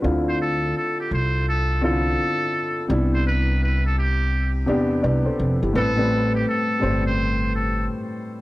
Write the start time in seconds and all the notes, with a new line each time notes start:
0.02 D2 D3 C4 E4 F4
0.29 C5
0.42 A4
0.77 A4
1.00 G4
1.11 C2 C5
1.49 A4
1.81 D3 C4 E4 F4 A4
2.88 C2 C3 B3 D4 E4
3.14 C5
3.27 B4
3.63 B4
3.86 A4
3.98 G4
4.66 E2 C3 B3 D4 G4
5.03 C2 B4 D5
5.26 A4 C5
5.39 F1
5.62 G1 E4 G4
5.73 A1 A2 G3 C4 A4 B4
5.96 A2 G3 C4 B4
6.35 G4
6.49 A4
6.80 G1 A2 G3 C4 C5
7.07 C5
7.56 A4